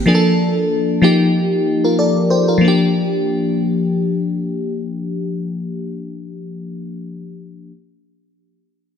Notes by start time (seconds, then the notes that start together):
0.06 F3 A#3 D4 G#4
0.15 A4
1.02 F3 A#3 D#4 G4
1.84 F4 A#4
1.99 A4 D5
2.30 G4 C5
2.48 F4 A#4
2.58 F3 A#3
2.65 D4 G4